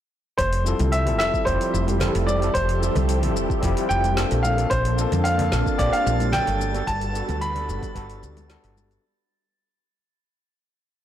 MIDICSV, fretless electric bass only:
0, 0, Header, 1, 2, 480
1, 0, Start_track
1, 0, Key_signature, -1, "major"
1, 0, Tempo, 540541
1, 343, Time_signature, 4, 2, 24, 8
1, 9811, End_track
2, 0, Start_track
2, 0, Title_t, "Fretless electric bass"
2, 0, Program_c, 0, 35
2, 344, Note_on_c, 0, 29, 92
2, 639, Note_off_c, 0, 29, 0
2, 708, Note_on_c, 0, 36, 86
2, 1062, Note_off_c, 0, 36, 0
2, 1062, Note_on_c, 0, 29, 86
2, 1144, Note_off_c, 0, 29, 0
2, 1303, Note_on_c, 0, 29, 84
2, 1384, Note_off_c, 0, 29, 0
2, 1543, Note_on_c, 0, 29, 85
2, 1838, Note_off_c, 0, 29, 0
2, 1908, Note_on_c, 0, 29, 87
2, 2199, Note_off_c, 0, 29, 0
2, 2262, Note_on_c, 0, 29, 92
2, 2558, Note_off_c, 0, 29, 0
2, 2630, Note_on_c, 0, 36, 84
2, 2984, Note_off_c, 0, 36, 0
2, 2984, Note_on_c, 0, 29, 86
2, 3065, Note_off_c, 0, 29, 0
2, 3223, Note_on_c, 0, 29, 79
2, 3304, Note_off_c, 0, 29, 0
2, 3463, Note_on_c, 0, 29, 86
2, 3758, Note_off_c, 0, 29, 0
2, 3831, Note_on_c, 0, 34, 90
2, 4120, Note_off_c, 0, 34, 0
2, 4184, Note_on_c, 0, 34, 95
2, 4479, Note_off_c, 0, 34, 0
2, 4550, Note_on_c, 0, 41, 85
2, 4904, Note_on_c, 0, 34, 89
2, 4917, Note_off_c, 0, 41, 0
2, 4985, Note_off_c, 0, 34, 0
2, 5145, Note_on_c, 0, 34, 84
2, 5225, Note_off_c, 0, 34, 0
2, 5384, Note_on_c, 0, 34, 91
2, 5679, Note_off_c, 0, 34, 0
2, 5749, Note_on_c, 0, 31, 92
2, 6039, Note_off_c, 0, 31, 0
2, 6105, Note_on_c, 0, 31, 92
2, 6399, Note_off_c, 0, 31, 0
2, 6472, Note_on_c, 0, 38, 85
2, 6824, Note_on_c, 0, 31, 88
2, 6837, Note_off_c, 0, 38, 0
2, 6905, Note_off_c, 0, 31, 0
2, 7064, Note_on_c, 0, 31, 87
2, 7304, Note_on_c, 0, 38, 78
2, 7318, Note_off_c, 0, 31, 0
2, 7599, Note_off_c, 0, 38, 0
2, 7671, Note_on_c, 0, 31, 95
2, 7960, Note_off_c, 0, 31, 0
2, 9811, End_track
0, 0, End_of_file